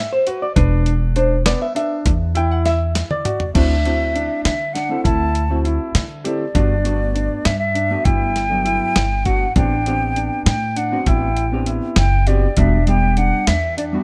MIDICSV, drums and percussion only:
0, 0, Header, 1, 2, 480
1, 0, Start_track
1, 0, Tempo, 597610
1, 455, Time_signature, 5, 3, 24, 8
1, 4537, Tempo, 602410
1, 11218, End_track
2, 0, Start_track
2, 0, Title_t, "Drums"
2, 214, Note_on_c, 9, 42, 61
2, 294, Note_off_c, 9, 42, 0
2, 453, Note_on_c, 9, 36, 108
2, 453, Note_on_c, 9, 42, 74
2, 533, Note_off_c, 9, 36, 0
2, 533, Note_off_c, 9, 42, 0
2, 692, Note_on_c, 9, 42, 54
2, 772, Note_off_c, 9, 42, 0
2, 931, Note_on_c, 9, 42, 59
2, 1011, Note_off_c, 9, 42, 0
2, 1171, Note_on_c, 9, 38, 105
2, 1171, Note_on_c, 9, 42, 82
2, 1251, Note_off_c, 9, 38, 0
2, 1251, Note_off_c, 9, 42, 0
2, 1414, Note_on_c, 9, 42, 65
2, 1494, Note_off_c, 9, 42, 0
2, 1652, Note_on_c, 9, 42, 84
2, 1653, Note_on_c, 9, 36, 101
2, 1732, Note_off_c, 9, 42, 0
2, 1733, Note_off_c, 9, 36, 0
2, 1891, Note_on_c, 9, 42, 60
2, 1971, Note_off_c, 9, 42, 0
2, 2133, Note_on_c, 9, 38, 35
2, 2133, Note_on_c, 9, 42, 58
2, 2213, Note_off_c, 9, 38, 0
2, 2213, Note_off_c, 9, 42, 0
2, 2372, Note_on_c, 9, 38, 61
2, 2372, Note_on_c, 9, 42, 89
2, 2453, Note_off_c, 9, 38, 0
2, 2453, Note_off_c, 9, 42, 0
2, 2495, Note_on_c, 9, 48, 63
2, 2575, Note_off_c, 9, 48, 0
2, 2612, Note_on_c, 9, 42, 60
2, 2612, Note_on_c, 9, 45, 91
2, 2692, Note_off_c, 9, 42, 0
2, 2692, Note_off_c, 9, 45, 0
2, 2731, Note_on_c, 9, 43, 76
2, 2811, Note_off_c, 9, 43, 0
2, 2852, Note_on_c, 9, 36, 87
2, 2852, Note_on_c, 9, 42, 63
2, 2852, Note_on_c, 9, 49, 84
2, 2932, Note_off_c, 9, 42, 0
2, 2932, Note_off_c, 9, 49, 0
2, 2933, Note_off_c, 9, 36, 0
2, 3096, Note_on_c, 9, 42, 47
2, 3176, Note_off_c, 9, 42, 0
2, 3338, Note_on_c, 9, 42, 49
2, 3418, Note_off_c, 9, 42, 0
2, 3576, Note_on_c, 9, 38, 101
2, 3576, Note_on_c, 9, 42, 71
2, 3656, Note_off_c, 9, 38, 0
2, 3656, Note_off_c, 9, 42, 0
2, 3819, Note_on_c, 9, 38, 30
2, 3819, Note_on_c, 9, 42, 57
2, 3899, Note_off_c, 9, 38, 0
2, 3899, Note_off_c, 9, 42, 0
2, 4057, Note_on_c, 9, 36, 90
2, 4060, Note_on_c, 9, 42, 72
2, 4137, Note_off_c, 9, 36, 0
2, 4140, Note_off_c, 9, 42, 0
2, 4298, Note_on_c, 9, 42, 53
2, 4378, Note_off_c, 9, 42, 0
2, 4539, Note_on_c, 9, 42, 50
2, 4619, Note_off_c, 9, 42, 0
2, 4776, Note_on_c, 9, 38, 97
2, 4776, Note_on_c, 9, 42, 76
2, 4856, Note_off_c, 9, 38, 0
2, 4856, Note_off_c, 9, 42, 0
2, 5017, Note_on_c, 9, 42, 63
2, 5097, Note_off_c, 9, 42, 0
2, 5255, Note_on_c, 9, 36, 94
2, 5256, Note_on_c, 9, 42, 76
2, 5335, Note_off_c, 9, 36, 0
2, 5335, Note_off_c, 9, 42, 0
2, 5495, Note_on_c, 9, 42, 52
2, 5575, Note_off_c, 9, 42, 0
2, 5738, Note_on_c, 9, 42, 51
2, 5818, Note_off_c, 9, 42, 0
2, 5974, Note_on_c, 9, 38, 98
2, 5974, Note_on_c, 9, 42, 78
2, 6054, Note_off_c, 9, 38, 0
2, 6054, Note_off_c, 9, 42, 0
2, 6215, Note_on_c, 9, 42, 61
2, 6295, Note_off_c, 9, 42, 0
2, 6452, Note_on_c, 9, 42, 74
2, 6454, Note_on_c, 9, 36, 100
2, 6532, Note_off_c, 9, 42, 0
2, 6534, Note_off_c, 9, 36, 0
2, 6696, Note_on_c, 9, 38, 27
2, 6696, Note_on_c, 9, 42, 57
2, 6776, Note_off_c, 9, 38, 0
2, 6776, Note_off_c, 9, 42, 0
2, 6934, Note_on_c, 9, 42, 55
2, 7013, Note_off_c, 9, 42, 0
2, 7174, Note_on_c, 9, 38, 101
2, 7174, Note_on_c, 9, 42, 72
2, 7254, Note_off_c, 9, 38, 0
2, 7254, Note_off_c, 9, 42, 0
2, 7410, Note_on_c, 9, 42, 55
2, 7413, Note_on_c, 9, 36, 71
2, 7490, Note_off_c, 9, 42, 0
2, 7493, Note_off_c, 9, 36, 0
2, 7652, Note_on_c, 9, 42, 72
2, 7653, Note_on_c, 9, 36, 101
2, 7732, Note_off_c, 9, 42, 0
2, 7733, Note_off_c, 9, 36, 0
2, 7894, Note_on_c, 9, 42, 49
2, 7974, Note_off_c, 9, 42, 0
2, 8134, Note_on_c, 9, 42, 52
2, 8214, Note_off_c, 9, 42, 0
2, 8374, Note_on_c, 9, 38, 94
2, 8374, Note_on_c, 9, 42, 74
2, 8454, Note_off_c, 9, 38, 0
2, 8454, Note_off_c, 9, 42, 0
2, 8614, Note_on_c, 9, 42, 58
2, 8693, Note_off_c, 9, 42, 0
2, 8852, Note_on_c, 9, 42, 69
2, 8854, Note_on_c, 9, 36, 101
2, 8932, Note_off_c, 9, 42, 0
2, 8934, Note_off_c, 9, 36, 0
2, 9092, Note_on_c, 9, 42, 51
2, 9172, Note_off_c, 9, 42, 0
2, 9330, Note_on_c, 9, 42, 53
2, 9409, Note_off_c, 9, 42, 0
2, 9567, Note_on_c, 9, 38, 99
2, 9567, Note_on_c, 9, 42, 77
2, 9647, Note_off_c, 9, 38, 0
2, 9647, Note_off_c, 9, 42, 0
2, 9810, Note_on_c, 9, 42, 60
2, 9890, Note_off_c, 9, 42, 0
2, 10049, Note_on_c, 9, 42, 74
2, 10052, Note_on_c, 9, 36, 97
2, 10128, Note_off_c, 9, 42, 0
2, 10132, Note_off_c, 9, 36, 0
2, 10291, Note_on_c, 9, 42, 55
2, 10371, Note_off_c, 9, 42, 0
2, 10528, Note_on_c, 9, 42, 55
2, 10608, Note_off_c, 9, 42, 0
2, 10771, Note_on_c, 9, 38, 101
2, 10771, Note_on_c, 9, 42, 78
2, 10851, Note_off_c, 9, 38, 0
2, 10851, Note_off_c, 9, 42, 0
2, 11016, Note_on_c, 9, 42, 59
2, 11096, Note_off_c, 9, 42, 0
2, 11218, End_track
0, 0, End_of_file